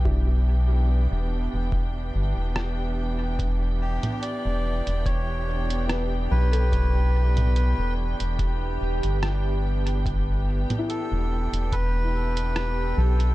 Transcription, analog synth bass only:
X:1
M:4/4
L:1/16
Q:"Swing 16ths" 1/4=72
K:Em
V:1 name="Analog synth bass" clef=bass
B,,,4- B,,, E,,,2 E,,,3 G,,, E,,,4- E,,,- | E,,,3 z2 E,,,2 E,,,6- E,,, B,,,2- | B,,,4- B,,, E,,,2 E,,,3 E,,, G,,,4- G,,,- | G,,,3 z2 E,,,2 E,,,6- E,,, B,,,2 |]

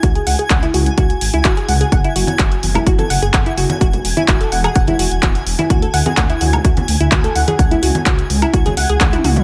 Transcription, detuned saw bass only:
X:1
M:4/4
L:1/16
Q:1/4=127
K:C#phr
V:1 name="Detuned saw bass" clef=bass
C,, z C,, z C,, z C,, z C,, z G,,, C,, G,,, z C,, z | F,,, z F,,, z F,,, z F,,, z F,,, z F,,, F,,, F,,, z F,,, z | E,,, z E,,, z E,,, z E,,, z E,,, z E,,, E,,, E,,, z E,,, z | D,, z D,, z D,, z D,, z D,, z D,, D,, D,, z D,, z |
C,, z C,, z C,, z C,, z C,, z C,, C,, C,, z C,, z |]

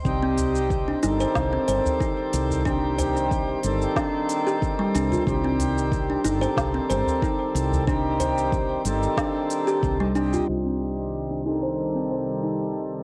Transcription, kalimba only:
X:1
M:4/4
L:1/16
Q:"Swing 16ths" 1/4=92
K:Cdor
V:1 name="Kalimba"
z C z3 D E c z C c2 E z3 | D z c4 z2 D z2 G z G, D F | z C z3 D E c z C c2 E z3 | D z c4 z2 D z2 G z G, D F |
z C z3 D E c z C c2 E z3 |]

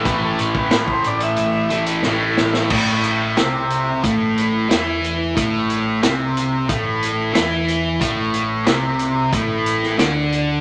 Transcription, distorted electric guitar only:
X:1
M:4/4
L:1/8
Q:1/4=91
K:Am
V:1 name="Distorted electric guitar" clef=bass
[A,,E,A,]4- [A,,E,A,] [A,,E,A,] [A,,E,A,]2 | [A,,A,]2 [C,C]2 [A,,A,]2 [E,E]2 | [A,,A,]2 [C,C]2 [A,,A,]2 [E,E]2 | [A,,A,]2 [C,C]2 [A,,A,]2 [D,D]2 |]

